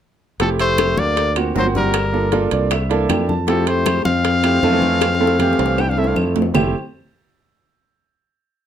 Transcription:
0.40 F1 F3 A3 C4 E4 G4 A4, high bongo, high conga, high timbale
0.59 A3 C5, high conga, high timbale
0.78 high bongo, high conga, high timbale, claves
0.97 D2 A#3 D5, high bongo, high conga
1.17 high bongo, high conga, high timbale
1.35 A#3 C4 F4 F#4, high bongo, high conga, high timbale, claves
1.55 G1 F#3 A#3 C4 F4 F#4 C5, high bongo, low bongo, high conga, low timbale
1.64 A#3 C4 F4 F#4
1.75 G3 A#4, high bongo, high conga
1.94 high bongo, high conga, high timbale, claves
2.12 A#3 D4 F4 A4, high conga
2.32 A#3 D4 F4 A4, high bongo, high conga, high timbale
2.51 C2 D5, high bongo, high conga, high timbale
2.71 E5, high bongo, high conga, high timbale, claves
2.89 A#3 D4 E4 A4 F5, high bongo, high conga, high timbale
3.09 F2 G5, high bongo, low bongo, high conga, high timbale, low timbale, claves
3.29 A5, high bongo, high conga
3.47 F3 A3 C4 E4 G4 A4, high bongo, high conga, high timbale
3.67 A3 C5, high conga, high timbale
3.86 high bongo, high conga, high timbale, claves
4.05 F2 C4 F5, high bongo, high conga
4.25 high bongo, high conga, high timbale
4.43 A3 C4 E4 G4, high bongo, high conga, high timbale, claves
4.63 F2 A3 C4 E4 A4, high bongo, low bongo, high conga
4.71 E3 A3 C4 A4
4.82 high bongo, high conga
5.01 high bongo, high conga, high timbale, claves
5.15 high bongo
5.19 A3 C4 E4 A4, high conga
5.27 high bongo
5.39 E3 A3 C4 G4, high conga, high timbale
5.53 high bongo
5.59 C2, high conga, high timbale
5.66 low bongo
5.78 E4 G5, low bongo, high conga, high timbale, claves
5.88 D4 F5, low bongo
5.97 A3 C4 E4 A4 E5, high conga
6.04 D4 F5, low bongo
6.16 F2, low bongo, high conga, claves
6.36 high conga, low timbale
6.42 low bongo
6.54 F1 A3 C4 E4 G4, low bongo, low conga, low timbale, claves

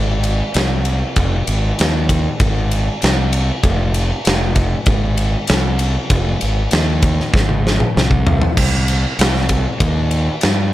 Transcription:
Already playing: G#1
0.24 ride
0.54 C2, snare, ride
0.85 ride
1.16 F1, kick, ride
1.47 G#1, ride
1.79 D#2, snare, ride
2.09 kick, ride
2.40 G#1, kick, ride
2.71 ride
3.02 C2, snare, ride
3.33 ride
3.63 F1, kick, ride
3.94 ride
4.25 F1, snare, ride
4.56 kick, ride
4.86 G#1, kick, ride
5.17 ride
5.47 C2, snare, ride
5.79 ride
6.10 F1, kick, ride
6.41 G#1, ride
6.71 D#2, snare, ride
7.02 kick, ride
7.20 snare
7.34 G#1, kick, snare
7.49 high tom
7.67 snare
7.80 mid tom
7.96 C2, snare
8.11 kick
8.27 floor tom
8.42 floor tom
8.57 C2, kick, crash
8.88 ride
9.19 C2, snare, ride
9.37 snare
9.49 kick, ride
9.80 D#2, kick, ride
10.11 ride
10.41 G2, snare, ride

